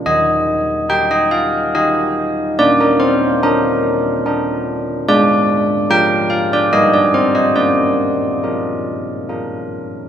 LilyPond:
\new Staff \with { instrumentName = "Church bells" } { \time 3/4 \key ees \major \tempo 4 = 72 << { ees''4 g''16 ees''16 f''8 ees''4 | d''16 bes'16 c''8 bes'2 | d''4 g''8 f''16 d''16 ees''16 d''16 c''16 ees''16 | d''2 r4 | } \\ { ees4 <ees' g'>4 <ees' g'>4 | bes4 d'4 <d' bes'>4 | aes4 <f' bes'>4 <g ees' bes'>4 | bes4 <f' bes'>4 <f' bes'>4 | } >> }